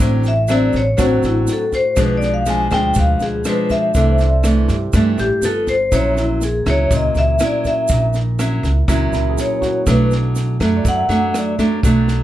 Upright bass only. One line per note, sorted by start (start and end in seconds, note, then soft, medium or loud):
0.00 0.70 A1 medium
0.74 0.97 A1 medium
0.99 1.22 A1 medium
1.22 1.46 A1 medium
1.97 2.67 B1 medium
2.72 2.94 D2 loud
2.97 3.19 D2 medium
3.20 3.43 D2 medium
3.95 4.65 C2 medium
4.69 4.92 G2 medium
4.93 5.16 G2 loud
5.18 5.29 A1 medium
5.42 5.88 G1 medium
5.92 6.62 A#1 medium
6.66 6.89 C#2 medium
6.91 7.13 C#2 medium
7.15 7.38 C#2 medium
7.90 8.59 A#1 loud
8.63 8.86 C#2 medium
8.88 9.11 C#2 loud
9.12 9.35 C#2 medium
9.87 10.56 B1 loud
10.61 10.83 F#2 medium
10.85 11.08 F#2 medium
11.08 11.32 F#2 medium
11.83 12.23 B1 loud